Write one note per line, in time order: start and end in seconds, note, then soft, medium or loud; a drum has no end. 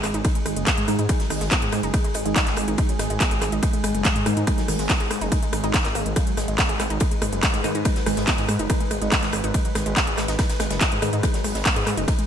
0.00 0.11 G#1 loud
0.00 12.27 G#3 medium
0.00 0.09 G#3 loud
0.00 6.56 G#4 medium
0.00 cross-stick medium
0.00 clap soft
0.00 open hi-hat medium
0.00 ride medium
0.14 0.22 G#1 medium
0.14 0.18 D#4 loud
0.14 closed hi-hat medium
0.24 0.30 D#4 medium
0.24 kick loud
0.24 cross-stick medium
0.24 closed hi-hat loud
0.24 ride medium
0.35 0.39 G#3 medium
0.35 closed hi-hat medium
0.46 0.54 G#1 medium
0.46 0.49 G#3 loud
0.46 cross-stick medium
0.46 open hi-hat loud
0.46 ride medium
0.56 0.64 F#1 medium
0.56 0.62 G#3 medium
0.56 closed hi-hat medium
0.66 0.70 G#3 medium
0.66 kick loud
0.66 cross-stick medium
0.66 snare loud
0.66 clap loud
0.66 closed hi-hat loud
0.66 ride medium
0.78 0.85 G#2 medium
0.78 0.83 G#3 medium
0.78 closed hi-hat medium
0.88 0.96 G#2 loud
0.88 0.98 D#3 loud
0.88 0.98 G#3 medium
0.88 0.91 G#3 medium
0.88 0.98 D#4 loud
0.88 cross-stick medium
0.88 open hi-hat loud
0.88 ride medium
0.99 1.06 G#2 medium
0.99 1.02 D#4 loud
0.99 closed hi-hat medium
1.09 1.13 G#3 medium
1.09 kick loud
1.09 cross-stick medium
1.09 closed hi-hat loud
1.09 ride medium
1.09 ride loud
1.20 1.25 F#3 medium
1.20 snare soft
1.20 closed hi-hat medium
1.30 1.38 G#1 loud
1.30 1.46 D#3 medium
1.30 1.46 G#3 medium
1.30 1.34 G#3 loud
1.30 1.46 D#4 medium
1.30 cross-stick medium
1.30 open hi-hat loud
1.30 open hi-hat medium
1.41 1.49 G#1 medium
1.41 1.46 G#3 loud
1.41 snare soft
1.41 closed hi-hat medium
1.50 1.57 B3 medium
1.50 kick loud
1.50 cross-stick medium
1.50 snare loud
1.50 clap loud
1.50 closed hi-hat loud
1.50 ride medium
1.62 1.70 G#2 medium
1.62 1.66 G#4 loud
1.62 closed hi-hat medium
1.62 ride medium
1.72 1.80 G#2 loud
1.72 1.78 G#3 loud
1.72 cross-stick medium
1.72 open hi-hat loud
1.72 ride medium
1.83 1.91 F#1 medium
1.83 1.87 D#4 loud
1.83 closed hi-hat medium
1.94 1.99 D#4 medium
1.94 kick loud
1.94 cross-stick medium
1.94 closed hi-hat loud
1.94 ride medium
2.04 2.08 G#3 medium
2.04 closed hi-hat medium
2.14 2.23 G#1 medium
2.14 2.18 G#3 loud
2.14 cross-stick medium
2.14 open hi-hat loud
2.14 ride medium
2.25 2.33 G#1 medium
2.25 2.35 D#3 medium
2.25 2.35 G#3 medium
2.25 2.31 G#3 medium
2.25 2.35 D#4 medium
2.25 closed hi-hat medium
2.36 2.39 G#3 medium
2.36 kick loud
2.36 cross-stick medium
2.36 snare loud
2.36 clap loud
2.36 closed hi-hat loud
2.36 ride medium
2.47 2.54 G#1 medium
2.47 2.52 G#3 medium
2.47 snare medium
2.47 clap soft
2.47 closed hi-hat medium
2.56 2.65 G#1 medium
2.56 2.60 G#3 medium
2.56 cross-stick medium
2.56 open hi-hat loud
2.56 ride medium
2.68 2.75 G#1 medium
2.68 2.71 D#4 loud
2.68 closed hi-hat medium
2.78 2.82 G#3 medium
2.78 kick loud
2.78 cross-stick medium
2.78 closed hi-hat medium
2.78 ride medium
2.89 2.94 F#3 medium
2.89 closed hi-hat medium
2.99 3.07 G#1 loud
2.99 3.03 G#3 loud
2.99 cross-stick medium
2.99 snare soft
2.99 open hi-hat loud
2.99 ride medium
3.10 3.18 G#1 medium
3.10 3.16 G#3 loud
3.10 closed hi-hat medium
3.20 3.26 B3 medium
3.20 kick loud
3.20 cross-stick medium
3.20 snare loud
3.20 clap loud
3.20 closed hi-hat loud
3.20 ride medium
3.31 3.39 G#1 medium
3.31 3.35 G#4 loud
3.31 closed hi-hat medium
3.41 3.49 G#1 loud
3.41 3.47 G#3 loud
3.41 cross-stick medium
3.41 clap soft
3.41 open hi-hat loud
3.41 ride medium
3.52 3.60 G#1 medium
3.52 3.56 D#4 loud
3.52 closed hi-hat medium
3.63 3.68 D#4 medium
3.63 kick loud
3.63 cross-stick medium
3.63 closed hi-hat loud
3.63 ride medium
3.73 3.77 G#3 medium
3.73 closed hi-hat medium
3.84 3.92 G#1 loud
3.84 3.87 G#3 loud
3.84 cross-stick medium
3.84 open hi-hat loud
3.84 ride medium
3.94 4.02 F#1 medium
3.94 4.00 G#3 medium
3.94 closed hi-hat medium
4.04 4.08 G#3 medium
4.04 kick loud
4.04 cross-stick medium
4.04 snare loud
4.04 clap loud
4.04 closed hi-hat loud
4.04 ride medium
4.15 4.23 G#2 medium
4.15 4.21 G#3 medium
4.15 closed hi-hat medium
4.26 4.34 G#2 medium
4.26 4.36 D#3 loud
4.26 4.36 G#3 medium
4.26 4.29 G#3 medium
4.26 4.36 D#4 loud
4.26 cross-stick loud
4.26 open hi-hat loud
4.26 ride medium
4.37 4.44 G#2 medium
4.37 4.40 D#4 loud
4.37 closed hi-hat medium
4.47 4.51 G#3 medium
4.47 kick loud
4.47 cross-stick medium
4.47 closed hi-hat medium
4.47 ride medium
4.58 4.63 F#3 medium
4.58 snare soft
4.58 closed hi-hat soft
4.68 4.76 G#1 loud
4.68 4.84 D#3 medium
4.68 4.84 G#3 medium
4.68 4.72 G#3 loud
4.68 4.84 D#4 medium
4.68 cross-stick medium
4.68 open hi-hat loud
4.68 open hi-hat medium
4.79 4.87 G#1 medium
4.79 4.85 G#3 loud
4.79 snare medium
4.79 closed hi-hat medium
4.89 4.95 B3 medium
4.89 kick loud
4.89 cross-stick medium
4.89 snare loud
4.89 clap loud
4.89 closed hi-hat medium
4.89 ride medium
5.00 5.08 G#2 medium
5.00 5.04 G#4 loud
5.00 closed hi-hat medium
5.00 ride soft
5.10 5.18 G#2 loud
5.10 5.16 G#3 loud
5.10 cross-stick loud
5.10 open hi-hat loud
5.10 ride medium
5.21 5.29 F#1 medium
5.21 5.25 D#4 loud
5.21 closed hi-hat medium
5.32 5.37 D#4 medium
5.32 kick loud
5.32 cross-stick medium
5.32 closed hi-hat medium
5.32 ride medium
5.43 5.46 G#3 medium
5.43 closed hi-hat medium
5.53 5.61 G#1 medium
5.53 5.59 D#4 medium
5.53 cross-stick loud
5.53 open hi-hat loud
5.53 ride medium
5.64 5.71 G#1 medium
5.64 5.73 D#3 medium
5.64 5.73 G#3 medium
5.64 5.73 D#4 medium
5.64 5.69 D#4 loud
5.64 closed hi-hat medium
5.74 5.82 G#3 medium
5.74 kick loud
5.74 cross-stick loud
5.74 snare loud
5.74 clap loud
5.74 closed hi-hat loud
5.74 ride medium
5.84 5.92 G#1 medium
5.84 5.93 A#3 medium
5.84 snare medium
5.84 clap soft
5.84 closed hi-hat medium
5.95 6.03 G#1 loud
5.95 6.01 A#3 loud
5.95 cross-stick medium
5.95 open hi-hat loud
5.95 ride medium
6.06 6.13 G#1 medium
6.06 6.11 G#3 medium
6.06 closed hi-hat medium
6.16 6.20 G#3 medium
6.16 kick loud
6.16 cross-stick medium
6.16 closed hi-hat medium
6.16 ride medium
6.27 6.32 F#3 medium
6.27 closed hi-hat soft
6.37 6.45 G#1 loud
6.37 6.41 G#3 loud
6.37 cross-stick medium
6.37 snare soft
6.37 open hi-hat loud
6.37 ride medium
6.48 6.56 G#1 medium
6.48 6.53 G#3 loud
6.48 closed hi-hat medium
6.54 12.27 B4 medium
6.58 6.64 B3 medium
6.58 kick loud
6.58 cross-stick medium
6.58 snare loud
6.58 clap loud
6.58 closed hi-hat medium
6.58 ride medium
6.69 6.77 G#1 medium
6.69 6.72 G#4 loud
6.69 closed hi-hat medium
6.80 6.88 G#1 loud
6.80 6.85 G#3 loud
6.80 cross-stick loud
6.80 clap soft
6.80 open hi-hat loud
6.80 ride medium
6.90 6.98 G#1 medium
6.90 6.94 D#4 loud
6.90 closed hi-hat medium
7.00 7.06 D#4 medium
7.00 kick loud
7.00 cross-stick medium
7.00 closed hi-hat medium
7.00 ride medium
7.11 7.15 G#3 medium
7.11 closed hi-hat medium
7.22 7.30 G#1 medium
7.22 7.25 G#3 loud
7.22 cross-stick loud
7.22 open hi-hat loud
7.22 ride medium
7.33 7.40 F#1 medium
7.33 7.38 G#3 medium
7.33 closed hi-hat medium
7.43 7.46 G#3 medium
7.43 kick loud
7.43 cross-stick loud
7.43 snare loud
7.43 clap loud
7.43 closed hi-hat medium
7.43 ride medium
7.54 7.61 G#2 medium
7.54 7.59 G#3 medium
7.54 closed hi-hat soft
7.64 7.72 G#2 medium
7.64 7.74 D#3 loud
7.64 7.74 G#3 medium
7.64 7.68 G#3 medium
7.64 7.74 D#4 loud
7.64 cross-stick medium
7.64 open hi-hat medium
7.64 ride medium
7.75 7.82 G#2 medium
7.75 7.78 D#4 loud
7.75 closed hi-hat medium
7.85 7.89 G#3 medium
7.85 kick loud
7.85 cross-stick loud
7.85 closed hi-hat medium
7.85 ride medium
7.96 8.01 F#3 medium
7.96 snare soft
7.96 closed hi-hat soft
8.06 8.14 G#1 loud
8.06 8.22 D#3 medium
8.06 8.22 G#3 medium
8.06 8.10 G#3 loud
8.06 8.22 D#4 medium
8.06 cross-stick loud
8.06 open hi-hat loud
8.06 open hi-hat medium
8.16 8.25 G#1 medium
8.16 8.23 G#3 loud
8.16 snare medium
8.16 closed hi-hat medium
8.27 8.33 B3 medium
8.27 kick loud
8.27 cross-stick medium
8.27 snare loud
8.27 clap loud
8.27 closed hi-hat medium
8.27 ride medium
8.38 8.46 G#2 medium
8.38 8.42 G#4 loud
8.38 closed hi-hat soft
8.38 ride soft
8.48 8.56 G#2 loud
8.48 8.54 G#3 loud
8.48 cross-stick loud
8.48 open hi-hat medium
8.48 ride medium
8.59 8.67 F#1 medium
8.59 8.63 D#4 loud
8.59 closed hi-hat medium
8.70 8.75 D#4 medium
8.70 kick loud
8.70 cross-stick loud
8.70 closed hi-hat medium
8.70 ride medium
8.80 8.84 G#3 medium
8.80 closed hi-hat medium
8.91 8.99 G#1 medium
8.91 8.94 G#3 loud
8.91 cross-stick medium
8.91 open hi-hat loud
8.91 ride medium
9.02 9.09 G#1 medium
9.02 9.11 D#3 medium
9.02 9.07 G#3 medium
9.02 9.11 G#3 medium
9.02 9.11 D#4 medium
9.02 closed hi-hat medium
9.12 kick loud
9.12 cross-stick loud
9.12 snare loud
9.12 clap loud
9.12 closed hi-hat medium
9.12 ride medium
9.23 9.30 G#1 medium
9.23 9.28 G#3 medium
9.23 snare medium
9.23 clap soft
9.23 closed hi-hat medium
9.32 9.41 G#1 loud
9.32 9.36 G#3 medium
9.32 cross-stick loud
9.32 open hi-hat loud
9.32 ride medium
9.44 9.52 G#1 medium
9.44 9.47 D#4 loud
9.44 closed hi-hat medium
9.54 9.58 G#3 medium
9.54 kick loud
9.54 cross-stick medium
9.54 closed hi-hat medium
9.54 ride medium
9.65 9.70 F#3 medium
9.65 closed hi-hat medium
9.75 9.83 G#1 loud
9.75 9.79 G#3 loud
9.75 cross-stick loud
9.75 snare soft
9.75 open hi-hat loud
9.75 ride medium
9.86 9.94 G#1 medium
9.86 9.91 G#3 loud
9.86 closed hi-hat medium
9.96 10.02 B3 medium
9.96 kick loud
9.96 cross-stick medium
9.96 snare loud
9.96 clap loud
9.96 closed hi-hat medium
9.96 ride medium
10.07 10.15 G#1 medium
10.07 10.10 G#4 loud
10.07 closed hi-hat medium
10.17 10.26 G#1 loud
10.17 10.23 G#3 loud
10.17 cross-stick medium
10.17 snare loud
10.17 clap soft
10.17 open hi-hat medium
10.17 ride medium
10.28 10.36 G#1 medium
10.28 10.32 D#4 loud
10.28 snare loud
10.28 closed hi-hat medium
10.28 ride medium
10.39 10.44 D#4 medium
10.39 kick loud
10.39 cross-stick loud
10.39 snare loud
10.39 closed hi-hat medium
10.39 ride medium
10.49 10.53 G#3 medium
10.49 snare loud
10.49 closed hi-hat medium
10.49 ride medium
10.60 10.68 G#1 loud
10.60 10.63 G#3 loud
10.60 cross-stick loud
10.60 snare loud
10.60 open hi-hat loud
10.60 ride medium
10.70 10.78 F#1 medium
10.70 10.76 G#3 medium
10.70 snare loud
10.70 closed hi-hat medium
10.70 ride medium
10.81 10.84 G#3 medium
10.81 kick loud
10.81 cross-stick medium
10.81 snare loud
10.81 clap loud
10.81 closed hi-hat loud
10.81 ride medium
10.92 10.99 G#2 medium
10.92 10.97 G#3 medium
10.92 closed hi-hat medium
11.02 11.10 G#2 loud
11.02 11.12 D#3 loud
11.02 11.05 G#3 medium
11.02 11.12 G#3 medium
11.02 11.12 D#4 loud
11.02 cross-stick medium
11.02 open hi-hat medium
11.02 ride medium
11.13 11.21 G#2 medium
11.13 11.16 D#4 loud
11.13 closed hi-hat medium
11.23 11.27 G#3 medium
11.23 kick loud
11.23 cross-stick medium
11.23 closed hi-hat medium
11.23 ride medium
11.23 ride loud
11.34 11.39 F#3 medium
11.34 snare soft
11.34 closed hi-hat medium
11.44 11.52 G#1 medium
11.44 11.48 G#3 loud
11.44 cross-stick medium
11.44 open hi-hat medium
11.44 open hi-hat loud
11.55 11.63 G#1 medium
11.55 11.61 G#3 loud
11.55 snare medium
11.55 closed hi-hat medium
11.65 11.71 B3 medium
11.65 kick loud
11.65 cross-stick medium
11.65 snare loud
11.65 clap loud
11.65 closed hi-hat medium
11.65 ride loud
11.65 ride medium
11.76 11.84 G#2 medium
11.76 11.80 G#4 loud
11.76 closed hi-hat medium
11.76 ride soft
11.87 11.95 G#2 loud
11.87 11.92 G#3 loud
11.87 cross-stick medium
11.87 clap soft
11.87 open hi-hat medium
11.87 ride medium
11.97 12.05 F#1 medium
11.97 12.01 D#4 loud
11.97 closed hi-hat medium
12.08 12.13 D#4 medium
12.08 kick loud
12.08 cross-stick medium
12.08 closed hi-hat loud
12.08 ride medium
12.08 ride loud
12.19 12.22 G#3 medium
12.19 closed hi-hat medium